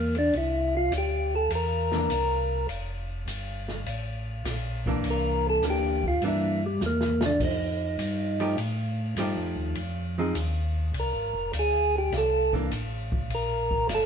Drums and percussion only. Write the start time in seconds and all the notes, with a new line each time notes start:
0.15 ride
0.33 ride
0.92 hi-hat pedal, ride
1.50 ride
1.92 snare
2.10 hi-hat pedal, ride
2.69 ride
3.28 hi-hat pedal, ride
3.68 snare
3.86 ride
4.45 snare, hi-hat pedal, ride
4.86 kick
5.04 ride
5.63 hi-hat pedal, ride
6.04 kick
6.22 ride
6.81 snare, hi-hat pedal
7.01 snare
7.21 snare
7.40 kick, crash
7.99 hi-hat pedal, ride
8.40 ride
8.58 ride
9.16 hi-hat pedal, ride
9.75 ride
10.35 hi-hat pedal, ride
10.94 ride
11.53 hi-hat pedal, ride
12.12 snare, ride
12.53 kick
12.71 hi-hat pedal, ride
13.12 kick
13.30 ride
13.71 kick
13.89 snare, hi-hat pedal, ride